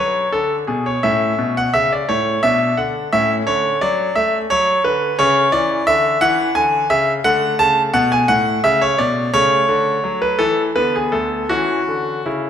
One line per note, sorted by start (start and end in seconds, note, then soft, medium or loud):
0.00 0.26 F#3 medium
0.00 0.99 C#4 soft
0.00 0.30 C#5 medium
0.32 0.61 D3 medium
0.32 0.54 A4 medium
0.67 0.96 B2 medium
0.67 0.85 G#4 medium
0.86 1.04 C#5 medium
1.03 1.32 A2 medium
1.03 2.40 C#4 soft
1.03 1.53 E5 medium
1.39 1.67 B2 medium
1.57 1.75 F#5 medium
1.74 2.02 C#3 medium
1.74 1.92 E5 loud
1.92 2.10 D5 medium
2.09 2.37 A2 medium
2.09 2.40 C#5 medium
2.43 2.71 B2 medium
2.43 3.09 D4 soft
2.43 2.78 E5 loud
2.77 3.06 D3 medium
2.77 3.13 F#5 medium
3.13 3.41 A2 medium
3.13 5.15 C#4 medium
3.13 3.33 E5 loud
3.47 3.75 D3 medium
3.47 3.78 C#5 loud
3.81 4.10 F#3 medium
3.81 4.13 D5 loud
4.16 4.44 A3 medium
4.16 4.36 E5 loud
4.50 4.79 F#3 medium
4.50 4.81 C#5 loud
4.84 5.13 D3 medium
4.84 5.16 B4 medium
5.19 5.47 C#3 medium
5.19 7.22 C#4 medium
5.19 5.50 C#5 loud
5.52 5.81 E3 medium
5.52 5.87 D5 loud
5.87 6.15 D3 medium
5.87 6.22 E5 loud
6.21 6.49 E3 medium
6.21 6.53 F#5 loud
6.55 6.84 D3 medium
6.55 6.91 G#5 loud
6.90 7.18 C#3 medium
6.90 7.11 E5 loud
7.24 7.53 D3 medium
7.24 9.30 A3 medium
7.24 7.56 F#5 loud
7.59 7.88 C#3 medium
7.59 7.80 A5 loud
7.94 8.22 B2 medium
7.94 8.12 F#5 loud
8.12 8.30 G#5 loud
8.28 8.57 A2 medium
8.28 8.61 F#5 loud
8.64 8.92 C#3 medium
8.64 8.82 E5 loud
8.81 8.99 C#5 medium
8.98 9.27 B2 medium
8.98 9.30 D5 loud
9.34 9.62 C#3 medium
9.34 10.72 A3 medium
9.34 10.18 C#5 loud
9.69 9.97 D3 medium
10.04 10.33 F#3 medium
10.22 10.40 B4 medium
10.39 10.69 E3 medium
10.39 10.61 A4 loud
10.76 11.06 D3 medium
10.76 11.46 B3 soft
10.76 10.94 B4 medium
10.96 11.14 G#4 medium
11.12 11.43 D2 medium
11.12 11.50 A4 medium
11.49 11.81 E3 medium
11.49 12.50 C#4 soft
11.49 12.26 F#4 loud
11.88 12.19 D3 medium
12.26 12.50 C#3 medium
12.26 12.50 E4 medium